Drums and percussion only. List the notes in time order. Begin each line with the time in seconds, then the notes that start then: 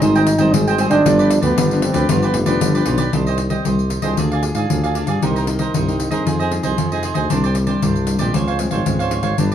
0.02 pandeiro
0.15 pandeiro
0.27 pandeiro
0.38 pandeiro
0.54 pandeiro
0.67 pandeiro
0.78 pandeiro
0.91 pandeiro
1.06 pandeiro
1.19 pandeiro
1.30 pandeiro
1.43 pandeiro
1.58 pandeiro
1.71 pandeiro
1.82 pandeiro
1.94 pandeiro
2.09 pandeiro
2.22 pandeiro
2.34 pandeiro
2.46 pandeiro
2.61 pandeiro
2.75 pandeiro
2.86 pandeiro
2.98 pandeiro
3.13 pandeiro
3.27 pandeiro
3.38 pandeiro
3.50 pandeiro
3.65 pandeiro
3.79 pandeiro
3.90 pandeiro
4.02 pandeiro
4.17 pandeiro
4.32 pandeiro
4.43 pandeiro
4.55 pandeiro
4.70 pandeiro
4.84 pandeiro
4.95 pandeiro
5.07 pandeiro
5.22 pandeiro
5.36 pandeiro
5.47 pandeiro
5.59 pandeiro
5.74 pandeiro
5.88 pandeiro
6.00 pandeiro
6.11 pandeiro
6.27 pandeiro
6.40 pandeiro
6.52 pandeiro
6.63 pandeiro
6.78 pandeiro
6.92 pandeiro
7.03 pandeiro
7.15 pandeiro
7.30 pandeiro
7.44 pandeiro
7.55 pandeiro
7.67 pandeiro
7.82 pandeiro
7.96 pandeiro
8.07 pandeiro
8.19 pandeiro
8.34 pandeiro
8.48 pandeiro
8.59 pandeiro
8.71 pandeiro
8.86 pandeiro
9.00 pandeiro
9.11 pandeiro
9.23 pandeiro
9.38 pandeiro
9.52 pandeiro